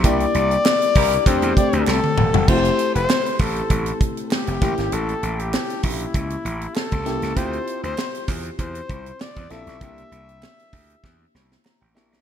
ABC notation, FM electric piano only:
X:1
M:4/4
L:1/16
Q:"Swing 16ths" 1/4=98
K:F
V:1 name="FM electric piano"
[B,DEG]6 z2 [A,CDG]2 [A,CDG]4 z2 | [A,CE_G=G]6 z8 [B,^CEG]2- | [B,^CEG]4 z8 z2 [B,CEG]2 | [CEFG]6 z8 [CEFA]2 |
[B,DEG]6 z6 b g [B,DEGe]2 |]